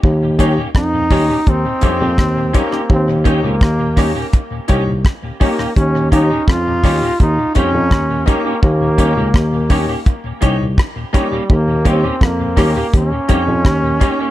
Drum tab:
HH |--x---o-p-x---x-|--x---o-p-x---o-|p-x---o-p-x---x-|--x---o-p-x---x-|
SD |----r-------r--r|----r-r-----r--r|----r-r-----r---|----r-------r---|
BD |o-o-o-o-o-o-o-o-|o-o-o-o-o-o-o-o-|o-o-o-o-o-o-o-o-|o-o-o-o-o-o-o-o-|

HH |--x---o-p-x---x-|
SD |----r-r-----r---|
BD |o-o-o-o-o-o-o-o-|